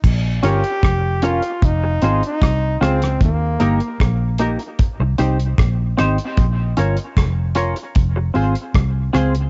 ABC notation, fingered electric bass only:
X:1
M:4/4
L:1/16
Q:1/4=76
K:Bbdor
V:1 name="Fingered electric bass" clef=bass
B,,,2 G,,, z F,,,3 z F,,,2 A,,, z C,,2 D,,2 | E,,2 G,,, z B,,,3 z2 C,, C,,2 B,,,2 A,,, z | B,,,2 G,,, z F,,,3 z F,,,2 A,,, z C,,2 D,,2 |]